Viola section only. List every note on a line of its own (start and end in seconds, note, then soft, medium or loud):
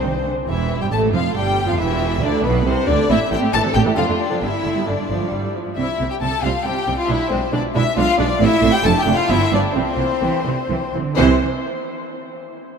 0.00 0.23 C5 medium
0.48 0.78 E3 medium
0.81 0.92 G3 medium
0.92 1.13 A3 medium
1.13 1.21 F3 medium
1.34 1.67 G3 medium
1.67 1.72 F3 medium
1.78 2.22 E3 medium
2.22 2.44 D3 medium
2.44 2.66 B3 medium
2.66 2.88 C3 medium
2.88 3.10 D3 medium
3.10 3.14 A3 medium
3.10 3.14 C4 medium
3.32 3.36 C3 medium
3.32 3.36 E3 medium
3.42 3.47 A3 medium
3.42 3.46 C4 medium
3.53 3.58 E3 medium
3.53 3.58 A3 medium
3.64 3.69 C3 medium
3.64 3.69 E3 medium
3.74 3.79 A3 medium
3.74 3.79 C4 medium
3.85 3.90 E3 medium
3.85 3.90 A3 medium
3.96 4.01 D3 medium
3.96 4.01 F3 medium
4.07 4.12 A3 medium
4.07 4.12 D4 medium
4.30 4.35 D3 medium
4.30 4.35 F3 soft
4.42 4.46 G3 medium
4.42 4.46 B3 medium
4.64 4.69 D3 soft
4.75 4.80 G3 medium
4.75 4.80 B3 medium
4.87 4.95 D3 medium
5.10 5.31 F3 medium
5.32 5.54 G3 medium
5.55 5.77 F3 medium
5.77 5.85 G3 soft
5.77 5.85 C4 soft
5.99 6.08 G3 soft
5.99 6.07 C4 soft
6.22 6.30 G3 soft
6.22 6.30 C4 soft
6.44 6.52 G3 medium
6.44 6.52 C4 medium
6.65 6.73 G3 soft
6.65 6.73 C4 soft
6.87 6.95 G3 soft
6.87 6.95 C4 soft
7.09 7.17 G#3 medium
7.09 7.17 D4 medium
7.30 7.39 G#3 medium
7.30 7.38 D4 medium
7.53 7.61 G#3 medium
7.53 7.61 D4 medium
7.75 7.83 G#3 medium
7.75 7.83 D4 medium
7.97 8.05 G#3 medium
7.97 8.05 D4 medium
8.19 8.27 G#3 medium
8.19 8.27 D4 medium
8.40 8.48 A3 medium
8.40 8.48 C4 medium
8.62 8.70 A3 medium
8.62 8.70 C4 medium
8.84 8.93 A3 medium
8.84 8.92 D4 medium
9.06 9.14 A3 medium
9.06 9.15 D4 medium
9.29 9.37 F3 medium
9.29 9.37 B3 medium
9.52 9.60 F3 medium
9.52 9.60 B3 medium
9.75 9.83 E3 medium
9.75 9.83 C4 medium
9.98 10.06 E3 soft
9.98 10.06 C4 medium
10.21 10.29 E3 soft
10.21 10.29 C4 soft
10.45 10.53 E3 soft
10.45 10.53 C4 soft
10.70 10.78 E3 soft
10.70 10.78 C4 medium
10.94 11.02 E3 soft
10.94 11.02 C4 soft
11.17 11.44 E3 medium
11.17 11.44 C4 medium